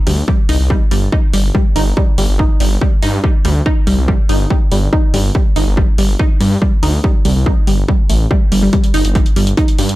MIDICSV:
0, 0, Header, 1, 4, 480
1, 0, Start_track
1, 0, Tempo, 422535
1, 317, Time_signature, 4, 2, 24, 8
1, 11312, End_track
2, 0, Start_track
2, 0, Title_t, "Synth arpeggio sound"
2, 0, Program_c, 0, 84
2, 77, Note_on_c, 0, 55, 73
2, 165, Note_off_c, 0, 55, 0
2, 317, Note_on_c, 0, 55, 84
2, 405, Note_off_c, 0, 55, 0
2, 556, Note_on_c, 0, 63, 102
2, 645, Note_off_c, 0, 63, 0
2, 797, Note_on_c, 0, 55, 84
2, 885, Note_off_c, 0, 55, 0
2, 1037, Note_on_c, 0, 55, 76
2, 1125, Note_off_c, 0, 55, 0
2, 1277, Note_on_c, 0, 63, 96
2, 1365, Note_off_c, 0, 63, 0
2, 1517, Note_on_c, 0, 55, 77
2, 1605, Note_off_c, 0, 55, 0
2, 1757, Note_on_c, 0, 55, 81
2, 1845, Note_off_c, 0, 55, 0
2, 1997, Note_on_c, 0, 63, 97
2, 2085, Note_off_c, 0, 63, 0
2, 2237, Note_on_c, 0, 55, 84
2, 2325, Note_off_c, 0, 55, 0
2, 2477, Note_on_c, 0, 55, 81
2, 2565, Note_off_c, 0, 55, 0
2, 2717, Note_on_c, 0, 63, 100
2, 2805, Note_off_c, 0, 63, 0
2, 2957, Note_on_c, 0, 55, 78
2, 3045, Note_off_c, 0, 55, 0
2, 3197, Note_on_c, 0, 55, 81
2, 3285, Note_off_c, 0, 55, 0
2, 3437, Note_on_c, 0, 63, 103
2, 3525, Note_off_c, 0, 63, 0
2, 3677, Note_on_c, 0, 55, 80
2, 3765, Note_off_c, 0, 55, 0
2, 3917, Note_on_c, 0, 55, 76
2, 4005, Note_off_c, 0, 55, 0
2, 4156, Note_on_c, 0, 63, 102
2, 4245, Note_off_c, 0, 63, 0
2, 4397, Note_on_c, 0, 55, 76
2, 4485, Note_off_c, 0, 55, 0
2, 4637, Note_on_c, 0, 55, 85
2, 4725, Note_off_c, 0, 55, 0
2, 4876, Note_on_c, 0, 63, 103
2, 4965, Note_off_c, 0, 63, 0
2, 5117, Note_on_c, 0, 55, 83
2, 5205, Note_off_c, 0, 55, 0
2, 5357, Note_on_c, 0, 55, 78
2, 5445, Note_off_c, 0, 55, 0
2, 5597, Note_on_c, 0, 63, 98
2, 5685, Note_off_c, 0, 63, 0
2, 5837, Note_on_c, 0, 55, 75
2, 5925, Note_off_c, 0, 55, 0
2, 6077, Note_on_c, 0, 55, 84
2, 6165, Note_off_c, 0, 55, 0
2, 6317, Note_on_c, 0, 63, 104
2, 6405, Note_off_c, 0, 63, 0
2, 6557, Note_on_c, 0, 55, 82
2, 6645, Note_off_c, 0, 55, 0
2, 6797, Note_on_c, 0, 55, 77
2, 6885, Note_off_c, 0, 55, 0
2, 7037, Note_on_c, 0, 63, 102
2, 7125, Note_off_c, 0, 63, 0
2, 7277, Note_on_c, 0, 55, 78
2, 7365, Note_off_c, 0, 55, 0
2, 7518, Note_on_c, 0, 55, 85
2, 7606, Note_off_c, 0, 55, 0
2, 7757, Note_on_c, 0, 63, 97
2, 7845, Note_off_c, 0, 63, 0
2, 7997, Note_on_c, 0, 55, 84
2, 8085, Note_off_c, 0, 55, 0
2, 8237, Note_on_c, 0, 55, 77
2, 8326, Note_off_c, 0, 55, 0
2, 8477, Note_on_c, 0, 63, 98
2, 8565, Note_off_c, 0, 63, 0
2, 8717, Note_on_c, 0, 55, 75
2, 8805, Note_off_c, 0, 55, 0
2, 8957, Note_on_c, 0, 55, 81
2, 9045, Note_off_c, 0, 55, 0
2, 9197, Note_on_c, 0, 57, 78
2, 9232, Note_off_c, 0, 57, 0
2, 9437, Note_on_c, 0, 55, 99
2, 9496, Note_off_c, 0, 55, 0
2, 9677, Note_on_c, 0, 55, 73
2, 9765, Note_off_c, 0, 55, 0
2, 9799, Note_on_c, 0, 55, 75
2, 9885, Note_off_c, 0, 55, 0
2, 9918, Note_on_c, 0, 55, 84
2, 10006, Note_off_c, 0, 55, 0
2, 10157, Note_on_c, 0, 63, 108
2, 10245, Note_off_c, 0, 63, 0
2, 10397, Note_on_c, 0, 55, 80
2, 10485, Note_off_c, 0, 55, 0
2, 10637, Note_on_c, 0, 55, 81
2, 10725, Note_off_c, 0, 55, 0
2, 10876, Note_on_c, 0, 63, 101
2, 10965, Note_off_c, 0, 63, 0
2, 11117, Note_on_c, 0, 55, 75
2, 11205, Note_off_c, 0, 55, 0
2, 11312, End_track
3, 0, Start_track
3, 0, Title_t, "Detuned saw bass"
3, 0, Program_c, 1, 39
3, 76, Note_on_c, 1, 38, 91
3, 263, Note_off_c, 1, 38, 0
3, 556, Note_on_c, 1, 36, 91
3, 651, Note_off_c, 1, 36, 0
3, 679, Note_on_c, 1, 36, 95
3, 864, Note_off_c, 1, 36, 0
3, 1037, Note_on_c, 1, 31, 99
3, 1224, Note_off_c, 1, 31, 0
3, 1516, Note_on_c, 1, 31, 100
3, 1703, Note_off_c, 1, 31, 0
3, 1997, Note_on_c, 1, 31, 93
3, 2184, Note_off_c, 1, 31, 0
3, 2477, Note_on_c, 1, 31, 100
3, 2571, Note_off_c, 1, 31, 0
3, 2599, Note_on_c, 1, 31, 83
3, 2784, Note_off_c, 1, 31, 0
3, 2957, Note_on_c, 1, 31, 84
3, 3144, Note_off_c, 1, 31, 0
3, 3437, Note_on_c, 1, 43, 88
3, 3624, Note_off_c, 1, 43, 0
3, 3917, Note_on_c, 1, 38, 91
3, 4104, Note_off_c, 1, 38, 0
3, 4397, Note_on_c, 1, 36, 90
3, 4491, Note_off_c, 1, 36, 0
3, 4518, Note_on_c, 1, 36, 97
3, 4704, Note_off_c, 1, 36, 0
3, 4877, Note_on_c, 1, 31, 101
3, 5064, Note_off_c, 1, 31, 0
3, 5357, Note_on_c, 1, 31, 102
3, 5544, Note_off_c, 1, 31, 0
3, 5836, Note_on_c, 1, 31, 87
3, 6023, Note_off_c, 1, 31, 0
3, 6317, Note_on_c, 1, 31, 101
3, 6411, Note_off_c, 1, 31, 0
3, 6438, Note_on_c, 1, 31, 85
3, 6624, Note_off_c, 1, 31, 0
3, 6796, Note_on_c, 1, 31, 86
3, 6983, Note_off_c, 1, 31, 0
3, 7276, Note_on_c, 1, 43, 89
3, 7463, Note_off_c, 1, 43, 0
3, 7756, Note_on_c, 1, 38, 92
3, 7943, Note_off_c, 1, 38, 0
3, 8237, Note_on_c, 1, 36, 89
3, 8331, Note_off_c, 1, 36, 0
3, 8358, Note_on_c, 1, 36, 100
3, 8544, Note_off_c, 1, 36, 0
3, 8717, Note_on_c, 1, 31, 101
3, 8904, Note_off_c, 1, 31, 0
3, 9197, Note_on_c, 1, 33, 91
3, 9384, Note_off_c, 1, 33, 0
3, 9677, Note_on_c, 1, 31, 84
3, 9864, Note_off_c, 1, 31, 0
3, 10157, Note_on_c, 1, 31, 103
3, 10251, Note_off_c, 1, 31, 0
3, 10279, Note_on_c, 1, 31, 86
3, 10464, Note_off_c, 1, 31, 0
3, 10637, Note_on_c, 1, 31, 82
3, 10824, Note_off_c, 1, 31, 0
3, 11117, Note_on_c, 1, 43, 91
3, 11304, Note_off_c, 1, 43, 0
3, 11312, End_track
4, 0, Start_track
4, 0, Title_t, "Drums"
4, 77, Note_on_c, 9, 46, 106
4, 190, Note_off_c, 9, 46, 0
4, 317, Note_on_c, 9, 36, 114
4, 431, Note_off_c, 9, 36, 0
4, 556, Note_on_c, 9, 46, 108
4, 670, Note_off_c, 9, 46, 0
4, 797, Note_on_c, 9, 36, 123
4, 911, Note_off_c, 9, 36, 0
4, 1037, Note_on_c, 9, 46, 104
4, 1150, Note_off_c, 9, 46, 0
4, 1277, Note_on_c, 9, 36, 115
4, 1391, Note_off_c, 9, 36, 0
4, 1516, Note_on_c, 9, 46, 107
4, 1630, Note_off_c, 9, 46, 0
4, 1757, Note_on_c, 9, 36, 118
4, 1871, Note_off_c, 9, 36, 0
4, 1997, Note_on_c, 9, 46, 105
4, 2110, Note_off_c, 9, 46, 0
4, 2237, Note_on_c, 9, 36, 111
4, 2351, Note_off_c, 9, 36, 0
4, 2477, Note_on_c, 9, 46, 103
4, 2590, Note_off_c, 9, 46, 0
4, 2717, Note_on_c, 9, 36, 125
4, 2831, Note_off_c, 9, 36, 0
4, 2956, Note_on_c, 9, 46, 103
4, 3070, Note_off_c, 9, 46, 0
4, 3197, Note_on_c, 9, 36, 113
4, 3311, Note_off_c, 9, 36, 0
4, 3436, Note_on_c, 9, 46, 106
4, 3550, Note_off_c, 9, 46, 0
4, 3677, Note_on_c, 9, 36, 119
4, 3791, Note_off_c, 9, 36, 0
4, 3916, Note_on_c, 9, 46, 103
4, 4030, Note_off_c, 9, 46, 0
4, 4157, Note_on_c, 9, 36, 110
4, 4271, Note_off_c, 9, 36, 0
4, 4397, Note_on_c, 9, 46, 100
4, 4510, Note_off_c, 9, 46, 0
4, 4637, Note_on_c, 9, 36, 119
4, 4751, Note_off_c, 9, 36, 0
4, 4876, Note_on_c, 9, 46, 96
4, 4990, Note_off_c, 9, 46, 0
4, 5117, Note_on_c, 9, 36, 114
4, 5231, Note_off_c, 9, 36, 0
4, 5357, Note_on_c, 9, 46, 97
4, 5470, Note_off_c, 9, 46, 0
4, 5597, Note_on_c, 9, 36, 118
4, 5710, Note_off_c, 9, 36, 0
4, 5837, Note_on_c, 9, 46, 100
4, 5950, Note_off_c, 9, 46, 0
4, 6077, Note_on_c, 9, 36, 109
4, 6191, Note_off_c, 9, 36, 0
4, 6317, Note_on_c, 9, 46, 97
4, 6430, Note_off_c, 9, 46, 0
4, 6557, Note_on_c, 9, 36, 116
4, 6671, Note_off_c, 9, 36, 0
4, 6796, Note_on_c, 9, 46, 98
4, 6910, Note_off_c, 9, 46, 0
4, 7037, Note_on_c, 9, 36, 111
4, 7151, Note_off_c, 9, 36, 0
4, 7277, Note_on_c, 9, 46, 102
4, 7390, Note_off_c, 9, 46, 0
4, 7517, Note_on_c, 9, 36, 111
4, 7631, Note_off_c, 9, 36, 0
4, 7756, Note_on_c, 9, 46, 100
4, 7870, Note_off_c, 9, 46, 0
4, 7997, Note_on_c, 9, 36, 115
4, 8111, Note_off_c, 9, 36, 0
4, 8236, Note_on_c, 9, 46, 96
4, 8350, Note_off_c, 9, 46, 0
4, 8477, Note_on_c, 9, 36, 119
4, 8591, Note_off_c, 9, 36, 0
4, 8717, Note_on_c, 9, 46, 97
4, 8830, Note_off_c, 9, 46, 0
4, 8957, Note_on_c, 9, 36, 109
4, 9071, Note_off_c, 9, 36, 0
4, 9196, Note_on_c, 9, 46, 101
4, 9310, Note_off_c, 9, 46, 0
4, 9437, Note_on_c, 9, 36, 115
4, 9551, Note_off_c, 9, 36, 0
4, 9677, Note_on_c, 9, 46, 101
4, 9790, Note_off_c, 9, 46, 0
4, 9916, Note_on_c, 9, 42, 69
4, 9917, Note_on_c, 9, 36, 114
4, 10030, Note_off_c, 9, 36, 0
4, 10030, Note_off_c, 9, 42, 0
4, 10038, Note_on_c, 9, 42, 69
4, 10151, Note_off_c, 9, 42, 0
4, 10156, Note_on_c, 9, 46, 103
4, 10270, Note_off_c, 9, 46, 0
4, 10278, Note_on_c, 9, 42, 68
4, 10391, Note_off_c, 9, 42, 0
4, 10396, Note_on_c, 9, 42, 66
4, 10397, Note_on_c, 9, 36, 123
4, 10510, Note_off_c, 9, 36, 0
4, 10510, Note_off_c, 9, 42, 0
4, 10518, Note_on_c, 9, 42, 69
4, 10632, Note_off_c, 9, 42, 0
4, 10636, Note_on_c, 9, 46, 106
4, 10750, Note_off_c, 9, 46, 0
4, 10758, Note_on_c, 9, 42, 67
4, 10871, Note_off_c, 9, 42, 0
4, 10876, Note_on_c, 9, 42, 66
4, 10877, Note_on_c, 9, 36, 112
4, 10990, Note_off_c, 9, 36, 0
4, 10990, Note_off_c, 9, 42, 0
4, 10998, Note_on_c, 9, 42, 72
4, 11112, Note_off_c, 9, 42, 0
4, 11116, Note_on_c, 9, 46, 105
4, 11229, Note_off_c, 9, 46, 0
4, 11238, Note_on_c, 9, 42, 69
4, 11312, Note_off_c, 9, 42, 0
4, 11312, End_track
0, 0, End_of_file